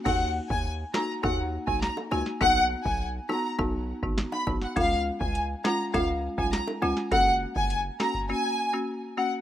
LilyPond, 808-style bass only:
\new Staff \with { instrumentName = "808-style bass" } { \clef bass \time 4/4 \key dis \minor \tempo 4 = 102 dis,8. dis,8. r8 dis,8. b,,8 r16 cis,16 r16 | b,,8. b,,8. r8 b,,8. gis,,8 r16 ais,,16 r16 | cis,8. cis,8. r8 cis,8. b,,8 r16 cis,16 r16 | fis,,8. fis,,8. r2 r8 | }